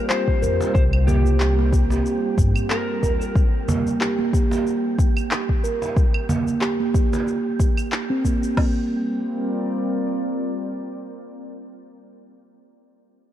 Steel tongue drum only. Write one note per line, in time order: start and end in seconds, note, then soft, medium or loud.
0.42 0.52 A#4 medium
1.07 1.24 A#3 medium
1.40 1.50 G4 medium
1.58 1.66 A#3 medium
1.72 1.83 G4 medium
1.91 2.04 A#3 medium
3.03 3.13 A#4 medium
3.68 3.85 A#3 medium
4.01 4.11 G4 medium
4.19 4.27 A#3 medium
4.34 4.44 G4 medium
4.52 4.65 A#3 medium
5.64 5.74 A#4 medium
6.29 6.46 A#3 medium
6.61 6.72 G4 medium
6.80 6.88 A#3 medium
6.94 7.04 G4 medium
7.12 7.26 A#3 medium
7.59 7.76 G4 medium
8.10 8.23 C4 medium
8.25 8.42 A#3 medium
8.43 8.56 C4 medium
8.57 8.87 A#3 medium